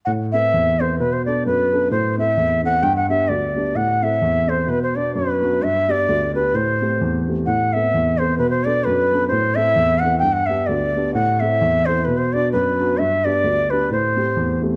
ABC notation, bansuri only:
X:1
M:2/4
L:1/16
Q:"Swing" 1/4=130
K:Ador
V:1 name="Bansuri"
f2 e4 c2 | B c d2 B4 | c2 e4 f2 | g f e2 d4 |
f2 e4 c2 | B c d2 B4 | e2 d4 B2 | c6 z2 |
f2 e4 c2 | B c d2 B4 | c2 e4 f2 | g f e2 d4 |
f2 e4 c2 | B c d2 B4 | e2 d4 B2 | c6 z2 |]